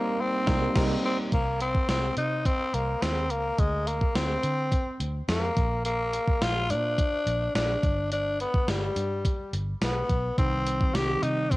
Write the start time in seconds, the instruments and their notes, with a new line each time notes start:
Already playing: tine electric piano G3 A#3 C4 D#4, tenor saxophone A#3, string machine A#4 D#5 G5 C6
0.20 tenor saxophone C4
0.47 fingered electric bass C2, tine electric piano G3 A#3 C4 D#4, analog polysynth G3 D#4 A#4, kick, snare
0.75 fingered electric bass C2, tine electric piano G3 A#3 C4 D#4, analog polysynth G3 D#4 A#4, kick, snare, crash
1.05 tenor saxophone C4
1.32 fingered electric bass C2, tenor saxophone A#3, kick, closed hi-hat
1.61 tenor saxophone C4, closed hi-hat
1.75 kick
1.89 fingered electric bass C2, tenor saxophone C4, snare, closed hi-hat
2.17 fingered electric bass C3, tenor saxophone D#4, closed hi-hat
2.45 tenor saxophone C4, kick, closed hi-hat
2.74 fingered electric bass C2, tenor saxophone A#3, closed hi-hat
3.02 fingered electric bass D#2, tenor saxophone C4, snare, closed hi-hat
3.30 fingered electric bass C#2, tenor saxophone A#3, closed hi-hat
3.58 fingered electric bass D2, tenor saxophone G#3, kick, closed hi-hat
3.87 tenor saxophone A#3, closed hi-hat
4.01 kick
4.15 fingered electric bass D2, tenor saxophone C4, snare, closed hi-hat
4.43 fingered electric bass D3, closed hi-hat
4.72 kick, closed hi-hat
5.00 fingered electric bass D2, closed hi-hat
5.28 fingered electric bass F2, tenor saxophone A#3, snare, closed hi-hat
5.57 fingered electric bass A#1, kick, closed hi-hat
5.85 tenor saxophone A#3, closed hi-hat
6.13 closed hi-hat
6.28 kick
6.42 fingered electric bass A#1, tenor saxophone F4, snare, closed hi-hat
6.70 fingered electric bass A#2, tenor saxophone D4, closed hi-hat
6.98 kick, closed hi-hat
7.26 fingered electric bass A#1, closed hi-hat
7.55 fingered electric bass A#1, tenor saxophone D4, snare, closed hi-hat
7.83 fingered electric bass G1, kick, closed hi-hat
8.12 tenor saxophone D4, closed hi-hat
8.40 tenor saxophone B3, closed hi-hat
8.54 kick
8.68 fingered electric bass G1, tenor saxophone G3, snare, closed hi-hat
8.96 fingered electric bass G2, closed hi-hat
9.25 kick, closed hi-hat
9.53 fingered electric bass G1, closed hi-hat
9.81 fingered electric bass B1, tenor saxophone B3, snare, closed hi-hat
10.10 fingered electric bass B1, kick, closed hi-hat
10.37 fingered electric bass C2, tine electric piano D#3 G3 C4 D#4, tenor saxophone C4, kick, closed hi-hat
10.67 closed hi-hat
10.81 kick
10.94 fingered electric bass C2, tine electric piano D#3 G3 C4 D#4, tenor saxophone G4, snare, closed hi-hat
11.23 fingered electric bass C3, tenor saxophone D#4, closed hi-hat
11.51 tenor saxophone C4, kick, closed hi-hat